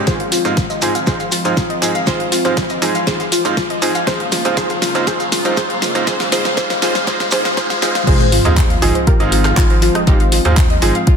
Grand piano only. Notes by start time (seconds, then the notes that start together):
0.07 F4
0.45 G#2 G#3 C4 D#4 F4
0.82 G#2 G#3 C4 D#4 G#4
1.07 G#2 G#3 C4 D#4 F4
1.45 G#2 G#3 C4 D#4 F4
1.82 G#2 G#3 C4 D#4 G#4
2.07 G#2 G#3 C4 D#4 F4
2.45 G#2 G#3 C4 D#4 F4
2.82 G#2 G#3 C4 D#4 G#4
3.07 G#2 G#3 C4 D#4 F4
3.45 G#2 G#3 C4 D#4 F4
3.82 G#2 G#3 C4 D#4 G#4
4.07 G#2 G#3 C4 D#4 F4
4.45 G#2 G#3 C4 D#4 F4
4.57 G#2 G#3 C4 D#4 F4
4.95 G#2 G#3 C4 D#4 F4
5.07 G#2 G#3 C4 D#4
5.45 G#2 G#3 C4 D#4 F4
5.57 G#2 G#3 D#4 F4
5.95 G#2 G#3 C4 D#4 F4
6.07 G#3 C4 D#4 F4
6.32 G#2 G#3 C4 D#4 F4
6.57 G#2 G#3 C4 D#4 F4
6.82 G#2 G#3 C4 D#4 F4
7.07 G#2 G#3 C4 D#4 F4
7.32 G#2 G#3 C4 D#4 F4
7.57 G#2 G#3 C4 D#4 F4
7.82 G#2 G#3 C4 D#4 F4
8.07 G#2 G#3 C4 D#4 F4
8.45 G#2 G#3 C4 D#4 F4
8.82 G#2 G#3 C4 D#4 G#4
9.20 G#2 G#3 C4 D#4 F4
9.57 G#2 G#3 C4 D#4 F4
10.07 G#2 G#3 C4 D#4 F4
10.45 G#2 G#3 C4 D#4 F4
10.82 G#2 G#3 C4 D#4 G#4